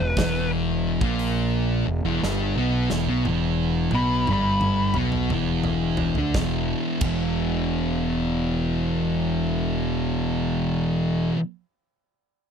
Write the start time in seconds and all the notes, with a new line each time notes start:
Already playing: B4
0.00 E1 E2
0.17 E1 E2 E3, kick, snare, open hi-hat
1.01 A#1 A#2 A#3, kick
1.19 open hi-hat
1.86 E1 E2
2.04 E1 E2 E3
2.23 G1 G2 G3, snare
2.56 B1 B2 B3
2.89 E1 E2 E3, snare
3.06 B1 B2 B3
3.25 E1 E2 E3, high tom
3.91 B1 B2 B3, high tom
3.95 B5
4.27 G1 G2 G3, mid tom
4.33 B5
4.61 mid tom
4.94 B1 B2 B3, mid tom
5.12 mid tom
5.30 E1 E2 E3, mid tom
5.64 floor tom
5.97 floor tom
6.15 D2 D3 D4, floor tom
6.34 E1 E2 B2, kick, snare
6.39 E3
7.01 E1 E2 B2, kick, crash
7.05 E3